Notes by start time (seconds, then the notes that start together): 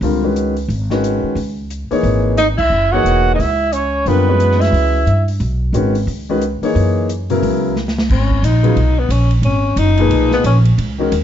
0.01 C#2 D3 G3 C4 F4 A#4, open hi-hat
0.23 D#3 G#3 C#4 F#4 B4
0.36 closed hi-hat
0.57 open hi-hat
0.68 G#1, open hi-hat
0.90 D#3 G#3 C#4 F#4 B4, snare
1.04 closed hi-hat
1.23 muted upright bass stroke
1.35 C#2, open hi-hat
1.70 closed hi-hat
1.91 E3 A#3 D#4 G#4 C#5, muted upright bass stroke, open hi-hat
2.03 G#1, open hi-hat
2.37 D#4 D#5, snare, closed hi-hat
2.57 C#2 E4 E5, kick, crash
2.70 F#1
2.92 E3 A#3 D#4 F#4 G#4 C#5 F#5
3.04 E1, closed hi-hat
3.35 D#4 D#5
3.39 C#2 E4 E5, open hi-hat
3.73 C#4 C#5, closed hi-hat
4.06 F#2 D3 G3 B3 C4 F4 A#4 B4, open hi-hat
4.29 E3 G#3 C#4 F#4 B4
4.40 closed hi-hat
4.52 snare
4.61 E4 E5, snare, open hi-hat
4.72 C#2, open hi-hat
5.06 G2, closed hi-hat
5.28 open hi-hat
5.40 B1, open hi-hat
5.73 G#1 D#3 G#3 C#4 F#4 B4, closed hi-hat
5.95 open hi-hat
6.07 C#2, open hi-hat
6.29 D#3 G#3 C#4 F#4 B4
6.41 closed hi-hat
6.61 E3 A#3 D#4 G#4 C#5, muted upright bass stroke, open hi-hat
6.75 F#2, open hi-hat
7.09 closed hi-hat
7.30 C#3 F#3 B3 E4 A#4, open hi-hat
7.43 C#2, open hi-hat
7.76 snare
7.88 snare
7.98 snare
8.09 G#1 C#4, kick, crash
8.30 kick
8.42 A#1 D#4, hi-hat pedal, ride
8.63 C#3 F#3 B3 F4 G#4, ride
8.76 B1, ride
8.99 B3
9.09 A#1 C#4, hi-hat pedal, ride
9.31 ride
9.42 G#1 C#4, ride
9.76 F#1 D#4, hi-hat pedal, ride
9.97 A#2 F3 D#4 G#4 B4, ride
10.10 B1, ride
10.31 B3, snare
10.44 A#1 C#4, hi-hat pedal, ride
10.65 ride
10.78 C#2, ride
10.98 D#3 G#3 C#4 F#4 A#4
11.12 D#2, hi-hat pedal, ride